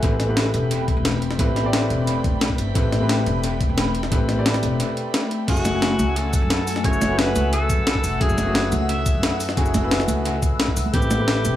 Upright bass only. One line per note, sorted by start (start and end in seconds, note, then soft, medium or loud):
0.03 0.52 A1 loud
0.54 0.95 E1 loud
0.97 1.38 E1 medium
1.39 1.89 A1 loud
1.90 2.24 E1 loud
2.24 2.32 E1 medium
2.58 2.74 G1 medium
2.75 3.25 A1 loud
3.27 3.68 E1 loud
3.69 4.10 E1 medium
4.12 4.62 A1 loud
4.63 4.80 E1 loud
5.48 5.98 F#1 loud
5.99 6.41 C#2 loud
6.42 6.83 F#2 medium
6.84 7.34 F#1 loud
7.36 7.71 C#2 loud
7.70 7.77 F#2 medium
8.04 8.19 E1 medium
8.21 8.71 F#1 loud
8.72 9.13 C#2 loud
9.15 9.56 F#2 medium
9.57 10.07 F#1 loud
10.08 10.50 C#2 loud
10.77 10.92 C#2 loud
10.94 11.43 A1 loud
11.45 11.56 E1 loud